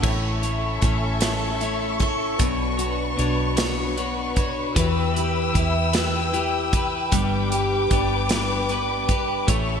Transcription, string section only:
0.04 2.38 A4 medium
0.04 2.38 E5 medium
0.04 4.72 C#6 medium
2.38 4.74 D4 medium
2.38 7.08 B4 medium
4.77 9.45 G5 medium
4.77 7.11 E6 medium
7.12 9.46 B4 medium
7.12 9.46 D6 medium
9.48 9.80 A4 medium
9.48 9.80 E5 medium
9.48 9.80 C#6 medium

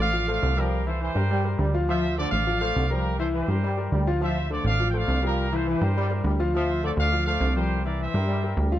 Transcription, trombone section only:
0.00 0.17 D3 medium
0.44 0.51 D3 medium
0.58 0.80 F3 medium
1.01 1.16 E3 medium
1.31 1.46 G3 loud
1.59 1.75 G3 medium
1.88 2.04 F3 loud
2.19 2.51 D3 medium
2.76 2.83 D3 medium
2.91 3.14 F3 medium
3.34 3.49 E3 medium
3.63 3.79 G3 medium
3.92 4.07 G3 medium
4.21 4.36 F3 medium
4.50 4.83 D3 medium
5.09 5.17 D3 medium
5.23 5.46 F3 medium
5.67 5.82 E3 medium
5.97 6.12 G3 loud
6.24 6.40 G3 medium
6.54 6.70 F3 loud
6.83 7.16 D3 medium
7.41 7.48 D3 medium
7.56 7.79 F3 medium
7.99 8.14 E3 medium
8.28 8.44 G3 medium
8.59 8.74 G3 medium

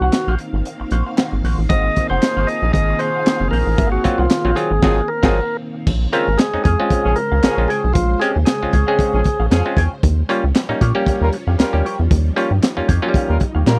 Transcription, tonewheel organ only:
0.00 0.35 F#4 medium
1.69 2.07 D#5 loud
2.10 2.49 C5 loud
2.47 2.72 D#5 loud
2.73 3.01 D#5 loud
2.99 3.48 C5 loud
3.51 3.89 A#4 medium
3.92 4.19 F#4 medium
4.18 4.57 F4 medium
4.56 5.10 G#4 loud
5.08 5.57 A#4 medium
6.13 6.40 A#4 loud
6.38 6.63 G#4 medium
6.64 7.18 G#4 loud
7.16 7.70 A#4 loud
7.68 7.93 G#4 medium
7.94 8.21 F4 loud
8.20 8.32 G#4 medium
8.45 9.46 G#4 medium

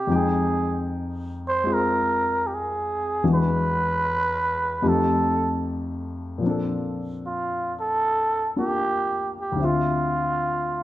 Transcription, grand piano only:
0.00 0.11 E4 medium
0.07 3.23 F2 medium
0.07 3.23 F3 soft
0.07 1.62 G#3 soft
0.07 3.24 D#4 soft
0.12 3.25 G5 medium
1.64 3.22 G#3 soft
1.64 3.23 C4 soft
1.64 3.24 F4 soft
1.64 3.24 G#4 soft
3.23 4.82 E2 soft
3.23 4.82 E3 soft
3.23 4.82 G#3 soft
3.23 4.82 D4 soft
3.23 4.82 F#4 medium
4.82 6.41 F2 medium
4.82 6.39 F3 soft
4.82 6.42 A3 soft
4.82 6.42 D#4 soft
4.82 6.42 G4 medium
6.38 9.57 A#2 soft
6.38 9.58 F3 soft
6.43 9.57 C4 soft
6.43 8.55 D4 soft
6.49 9.62 A4 medium
8.56 9.59 A#3 soft
8.56 9.59 D4 soft
8.56 9.59 F4 soft
8.56 9.60 A#4 soft
9.52 10.83 D2 medium
9.56 10.83 D3 soft
9.56 10.83 C4 soft
9.61 10.83 F4 medium
9.61 10.83 E5 soft

